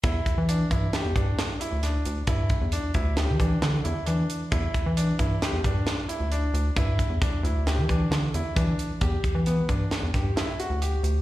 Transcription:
<<
  \new Staff \with { instrumentName = "Grand piano" } { \time 5/4 \key e \minor \tempo 4 = 134 e'4 d'8 e'8 g'8 d'4 e'8 d'4 | e'4 d'8 e'8 g'8 d'4 e'8 d'4 | e'4 d'8 e'8 g'8 d'4 e'8 d'4 | e'4 d'8 e'8 g'8 d'4 e'8 d'4 |
g'4 b8 d'4 g'8 e'8 fis'8 g'4 | }
  \new Staff \with { instrumentName = "Analog synth bass" } { \clef bass \time 5/4 \key e \minor e,8 r16 e8. g,8 r16 e,16 g,8 r8. d,8. d,8 | g,8. e,8 r16 d,8. e16 e8 d8 e,16 r16 e8 r8 | e,8 r16 e8. g,8 r16 e,16 g,8 r8. d,8. d,8 | g,8. e,8 r16 d,8. e16 e8 d8 e,16 r16 e8 r8 |
e,8 r16 e8. g,8 r16 e,16 g,8 r8. d,8. d,8 | }
  \new DrumStaff \with { instrumentName = "Drums" } \drummode { \time 5/4 <hh bd>8 <hh bd>8 hh8 <hh bd>8 <hh sn>8 <hh bd>8 <hh sn>8 hh8 <hh sn>8 hh8 | <hh bd>8 <hh bd>8 hh8 <hh bd>8 <hh sn>8 <hh bd>8 <hh sn>8 hh8 hh8 hh8 | <hh bd>8 <hh bd>8 hh8 <hh bd>8 <hh sn>8 <hh bd>8 <hh sn>8 hh8 hh8 hh8 | <hh bd>8 <hh bd>8 <hh bd sn>8 hh8 <hh sn>8 <hh bd>8 <hh sn>8 hh8 <hh bd>8 hh8 |
<hh bd>8 <hh bd>8 hh8 <hh bd>8 <hh sn>8 <hh bd sn>8 <hh sn>8 hh8 hh8 hh8 | }
>>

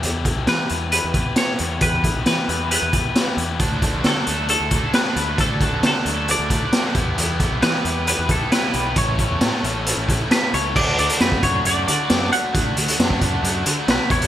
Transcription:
<<
  \new Staff \with { instrumentName = "Clean electric guitar" } { \time 4/4 \key d \major \tempo 4 = 134 r4 b'4 b'4 cis''4 | b'4 b'4 b'4. r8 | r4 a'4 a'4 b'4 | a'4 a'4 d''4. r8 |
r4 b'4 b'8 a'8 b'4 | cis''2. b'8 cis''8 | d''8 d''8 b'8 cis''8 d''8 d''4 fis''8~ | fis''4. r4. b'8 cis''8 | }
  \new Staff \with { instrumentName = "Overdriven electric guitar" } { \time 4/4 \key d \major <e b e' g'>8 <e b e' g'>8 <e b e' g'>8 <e b e' g'>8 <e b e' g'>8 <e b e' g'>8 <e b e' g'>8 <e b e' g'>8 | <e b e' g'>8 <e b e' g'>8 <e b e' g'>8 <e b e' g'>8 <e b e' g'>8 <e b e' g'>8 <e b e' g'>8 <e b e' g'>8 | <fis a d' a'>8 <fis a d' a'>8 <fis a d' a'>8 <fis a d' a'>8 <fis a d' a'>8 <fis a d' a'>8 <fis a d' a'>8 <fis a d' a'>8 | <fis a d' a'>8 <fis a d' a'>8 <fis a d' a'>8 <fis a d' a'>8 <fis a d' a'>8 <fis a d' a'>8 <fis a d' a'>8 <g b e' g'>8 |
<g b e' g'>8 <g b e' g'>8 <g b e' g'>8 <g b e' g'>8 <g b e' g'>8 <g b e' g'>8 <g b e' g'>8 <g b e' g'>8 | <cis' e' a'>8 <cis' e' a'>8 <cis' e' a'>8 <cis' e' a'>8 <cis' e' a'>8 <cis' e' a'>8 <cis' e' a'>8 <cis' e' a'>8 | <a d' fis'>8 <a d' fis'>8 <a d' fis'>8 <a d' fis'>8 <a d' fis'>8 <a d' fis'>8 <a d' fis'>8 <a d' fis'>8 | <a d' fis'>8 <a d' fis'>8 <a d' fis'>8 <a d' fis'>8 <a d' fis'>8 <a d' fis'>8 <a d' fis'>8 <g b e' g'>8 | }
  \new Staff \with { instrumentName = "Overdriven electric guitar" } { \time 4/4 \key d \major r1 | r1 | <a d' fis'>8 <a d' fis'>8 <a d' fis'>8 <a d' fis'>8 <a d' fis'>8 <a d' fis'>8 <a d' fis'>8 <a d' fis'>8 | <a d' fis'>8 <a d' fis'>8 <a d' fis'>8 <a d' fis'>8 <a d' fis'>8 <a d' fis'>8 <a d' fis'>8 <e b e' g'>8 |
<e b e' g'>8 <e b e' g'>8 <e b e' g'>8 <e b e' g'>8 <e b e' g'>8 <e b e' g'>8 <e b e' g'>8 <e b e' g'>8 | <e a cis' a'>8 <e a cis' a'>8 <e a cis' a'>8 <e a cis' a'>8 <e a cis' a'>8 <e a cis' a'>8 <e a cis' a'>8 <e a cis' a'>8 | <fis a d'>8 <fis a d'>8 <fis a d'>8 <fis a d'>8 <fis a d'>8 <fis a d'>8 <fis a d'>8 <fis a d'>8 | <fis a d'>8 <fis a d'>8 <fis a d'>8 <fis a d'>8 <fis a d'>8 <fis a d'>8 <fis a d'>8 <g b e'>8 | }
  \new Staff \with { instrumentName = "Picked electric bass" } { \clef bass \time 4/4 \key d \major e,8. b,,16 e16 r16 e,8. e,8 r8. e,8 | e,8. b,,16 e16 r16 e,8. e,8 r8. e,8 | d,8. a,,16 d16 r16 d,8. d,8 r8. d,8 | d,8. a,,16 d16 r16 d,8. d,8 r8. e,8 |
e,8. b,,16 e16 r16 e,8. e,8 r8. b,,8 | a,,8. e,16 a,16 r16 a,,8. a,,8 r8. cis,8 | d,8 d,16 r16 fis,4 fis,8 d16 r16 fis,8 r8 | d,8 d,16 r16 fis,4 fis,8 d16 r16 b,,16 r16 e,8 | }
  \new DrumStaff \with { instrumentName = "Drums" } \drummode { \time 4/4 hh8 <hh bd>8 <hh sn>8 hh8 hh8 <hh bd>8 <hh sn>8 hh8 | <hh bd>8 <hh bd>8 <hh sn>8 hh8 hh8 <hh bd>8 <hh sn>8 hh8 | <hh bd>8 <hh bd>8 <hh sn>8 hh8 hh8 <hh bd>8 <hh sn>8 hh8 | <hh bd>8 <hh bd>8 <hh sn>8 hh8 hh8 <hh bd>8 <hh sn>8 <hh bd>8 |
hh8 <hh bd>8 <hh sn>8 hh8 hh8 <hh bd>8 <hh sn>8 hh8 | <hh bd>8 <hh bd>8 <hh sn>8 hh8 hh8 <hh bd>8 <hh sn>8 hh8 | <cymc bd>8 hh16 hh16 <hh sn>16 bd16 <hh bd>8 hh8 hh8 <hh sn>8 hh8 | <hh bd>8 hh16 hh16 <hh sn>16 bd16 <hh bd>8 hh8 hh8 <hh sn>8 <hh bd>16 hh16 | }
>>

